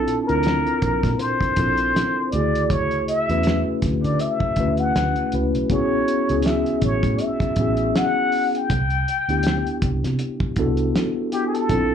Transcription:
Already playing: C4 D4 E4 F4 A4
0.08 closed hi-hat
0.26 D2 C4 D4 E4 F4 A#4, closed hi-hat
0.43 snare, closed hi-hat
0.67 closed hi-hat
0.82 A#1, kick, closed hi-hat
1.03 A#2, kick, snare, closed hi-hat
1.19 C5, closed hi-hat
1.41 kick, closed hi-hat
1.56 A#1 C4 D4 E4 F4 A4, kick, closed hi-hat
1.77 closed hi-hat
1.96 snare, closed hi-hat
2.32 D2 C#3 A3 E4 F#4 G#4 D5, closed hi-hat
2.55 closed hi-hat
2.69 C#5, kick, closed hi-hat
2.91 closed hi-hat
3.08 E5, closed hi-hat
3.29 E2 A3 C#4 E4 F#4 B4, closed hi-hat
3.43 snare, closed hi-hat
3.82 D2, kick, snare, closed hi-hat
4.03 D3 D5, closed hi-hat
4.19 E5, closed hi-hat
4.40 muted fingered electric bass stroke, kick
4.56 D2 A3 C#4 E4 F#4, kick, closed hi-hat
4.60 B4
4.77 F#5, closed hi-hat
4.96 D2, snare, closed hi-hat
5.16 closed hi-hat
5.32 C#2 A3 C#4 E4 F#4 B4, closed hi-hat
5.54 B1, closed hi-hat
5.70 A1 B3 C#4 E4 F#4 G#4 C#5, kick, closed hi-hat
6.08 closed hi-hat
6.29 C#2 B3 C#4 E4 F#4 G#4, closed hi-hat
6.42 E5, snare, closed hi-hat
6.66 closed hi-hat
6.82 A1 C#5, kick, closed hi-hat
7.03 A2, kick, closed hi-hat
7.19 E5, closed hi-hat
7.40 kick, closed hi-hat
7.56 A1 B3 C#4 E4, kick, closed hi-hat
7.60 F#4 G#4
7.77 closed hi-hat
7.96 F#5, snare, closed hi-hat
8.32 open hi-hat
8.55 G5, closed hi-hat
8.70 C2, kick, closed hi-hat
8.90 closed hi-hat
9.08 closed hi-hat
9.29 D2 B3 D4 E4 G4, closed hi-hat
9.43 snare, closed hi-hat
9.67 closed hi-hat
9.82 C2, kick, closed hi-hat
10.04 C3, snare, closed hi-hat
10.19 closed hi-hat
10.40 muted fingered electric bass stroke, kick
10.56 C2 B3 D4 E4 F#4 A4, kick, closed hi-hat
10.77 closed hi-hat
10.96 snare, closed hi-hat
11.32 B3 D4 E4 F#4 G4, closed hi-hat
11.47 G#4
11.54 A4, closed hi-hat
11.70 A#1 C4 D4 E4 F4 A4, kick, closed hi-hat

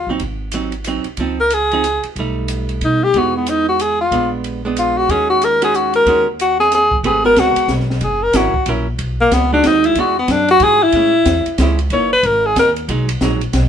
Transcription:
0.07 A1 F#3 C4 D#4
0.20 G#1, kick, ride
0.52 F#3 C4 D#4, hi-hat pedal, ride
0.72 ride
0.84 F#3 C4 D#4, hi-hat pedal, ride
1.04 muted upright bass stroke, ride
1.17 C#2 F3 C4 D#4, kick, ride
1.40 A#4
1.50 G#4, hi-hat pedal, ride
1.71 F3 C4 D#4, ride
1.84 hi-hat pedal, ride
2.03 muted upright bass stroke, ride
2.16 B1 G3, kick, ride
2.20 A3 D#4
2.48 hi-hat pedal, ride
2.69 ride
2.81 B2 D#4, ride
3.04 G4
3.14 E2 E3 G#3 B3 D#4, kick, ride
3.18 F#4
3.37 B3
3.46 D#4, hi-hat pedal, ride
3.69 F#4
3.79 G#4, hi-hat pedal, ride
4.01 F4
4.11 A#1 G#3 B3 D4, kick, ride
4.44 ride
4.65 G#3 B3 D4
4.76 F4, hi-hat pedal, ride
4.97 F#4
5.09 D#2 D#3 G#3 C#4 F#4 G#4, kick, ride
5.30 F#4
5.42 A#4, hi-hat pedal, ride
5.62 D#3 G#3 C#4 F#4 G#4, ride
5.74 F#4, hi-hat pedal
5.94 A#4, ride
6.06 D#2 D#3 G#3 C#4 F#4, kick, ride
6.39 F#4, hi-hat pedal, ride
6.60 G#4, snare
6.72 G#4, snare, hi-hat pedal, ride
6.91 G1, kick
7.03 G#1 A3 C4 G4 G#4 B4, kick, ride
7.24 G#3 B3 F#4 A#4
7.36 C#2, kick, snare, hi-hat pedal, ride
7.40 F#4
7.56 muted upright bass stroke, ride
7.68 B1, kick, snare, hi-hat pedal
7.80 snare
7.90 snare
8.01 F#1 G#4, kick, ride
8.23 A#4
8.33 G#1 F#3 C#4 E4 F#4 A#4, kick, snare, hi-hat pedal, ride
8.54 muted upright bass stroke, kick
8.66 A#1 F#3 C#4 E4 A#4, kick, ride
8.99 B1, kick, ride
9.21 A#3
9.31 C#2 B3, kick, snare, hi-hat pedal, ride
9.53 G#3 D4 D#4 F#4
9.64 D#2 D#4, kick, snare, hi-hat pedal, ride
9.84 E4, ride
9.95 E2 E3 G#3 D4 F#4, kick, ride
10.00 F#4
10.19 B3
10.28 F#2 D4, kick, snare, hi-hat pedal, ride
10.48 F#4, ride
10.60 G#2 E3 G#3 D4 F#4 G#4, kick, ride
10.83 E4
10.92 A2 G#3 C#4, kick, ride
10.96 E4
11.25 E2, kick, snare, hi-hat pedal, ride
11.46 muted upright bass stroke, ride
11.58 C#2 G#3 C#4 E4, kick, snare, hi-hat pedal, ride
11.79 ride
11.90 F#1 E3 A#3 D#4 C#5, kick, ride
12.13 B4
12.23 G#1 A#4, kick, ride
12.46 G#4
12.56 D#2 A#4, kick, snare, hi-hat pedal, ride
12.76 ride
12.88 B1 F#3 G#3 D#4, kick, ride
13.09 ride
13.21 A#1 F#3 G#3 D#4, kick, snare, hi-hat pedal
13.41 ride
13.53 B1, kick, snare, hi-hat pedal, ride

